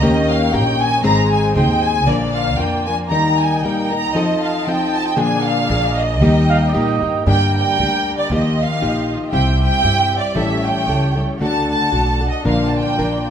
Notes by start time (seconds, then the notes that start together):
0.01 D#2 D#3 A#3 C#4 D#4 G4 A#4 C#5 D#5 G5
0.29 F5
0.53 A#1 A#3 C#4 G4 A#4 G5
0.80 G#5
1.04 G#1 G#2 D#3 G#3 C4 D#4 G#4 C5 A#5
1.32 G#5
1.55 D#2 G#3 C4 D#4 G#4 G5
1.84 G#5
2.06 A#1 A#2 D3 F3 A#3 D4 F4 A#4 D5
2.35 F5
2.58 F2 F3 A#3 D4 A#4 G5
2.85 D4 A#4 G#5
2.89 F3 A#3
3.10 D#2 D#3 G3 A#3 D#4 A#4 G5 A#5
3.40 G#5
3.63 A#1 G3 A#3 D#4 A#4 G5
3.90 A#3 D#4 A#4 A#5
4.13 F2 F3 C4 D#4 F4 A4 D#5
4.17 D#5 A5
4.43 F5
4.67 C2 F3 C4 D#4 A4 G5
4.95 A5
5.07 G5
5.16 A#2 D3 F3 A#3 D4 G#4 D5 G#5
5.44 F5
5.69 A#1 F3 A#3 D4 G#4
5.96 D#5
6.21 D#2 D#3 G3 A#3 D#4 G4 A#4 G5
6.50 F5
6.68 D5
6.73 A#2 G3 A#3 D#4 G4 D#5
7.02 G2 A#3 D#4 G4
7.25 G2 D3 G3 A#3 D4 G4 A#4 G5
7.58 G5
7.79 D2 G3 A#3 D4 G4
8.18 D5
8.29 D#2 D#3 F3 A#3 D#4 F4 G4 D#5
8.35 D#5
8.62 F5
8.82 A#1 F3 A#3 D#4 G4
9.29 C2 C4 G4 E5 G5
9.33 C3 G3 C4 E4 G4
9.61 G5
9.84 G2 G3 C4 E4 G4
10.18 D5
10.33 A1 A2 E3 G3 A3 C#4 E4 A4 C#5
10.39 E5
10.67 G5
10.87 C#2 G3 C#4 E4 A4
11.16 G3 C#4 E4 A4
11.39 D2 D3 A3 D4 F#4 A4 F#5
11.44 A5
11.70 A5
11.92 B1 A3 D4 F#4 A4
12.21 D4 F#4 A4
12.30 D#5
12.43 A#1 A#2 D3 F3 A#3 D4 F4 A#4 D5 F5
12.68 A5
12.76 G5
12.97 A#1 F3 A#3 D4 A#4